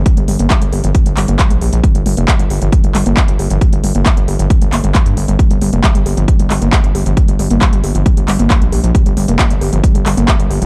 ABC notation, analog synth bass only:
X:1
M:4/4
L:1/16
Q:1/4=135
K:Gm
V:1 name="Analog synth bass" clef=bass
z G,,, G,,, G,,, z G,,, G,,, G,,, z G,,, G,,, G,,, z B,,, B,,, B,,, | z G,,, G,,, F,,, z G,,, G,,, G,,, z G,,, G,,, G,,, z G,,, G,,, G,,, | z G,,, G,,, G,,, z G,,, G,,, G,,, z G,,, G,,, G,,, z G,, G,,, G,,, | z G,,, G,,, F,,, z G,,, G,,, G,,, z G,,, G,,, G,,, z G,,, G,,, G,,, |
z G,,, G,,, G,,, z G,,, G,,, G,,, z G,,, G,,, G,,, z B,,, B,,, B,,, | z G,,, G,,, F,,, z G,,, G,,, G,,, z G,,, G,,, G,,, z G,,, G,,, G,,, |]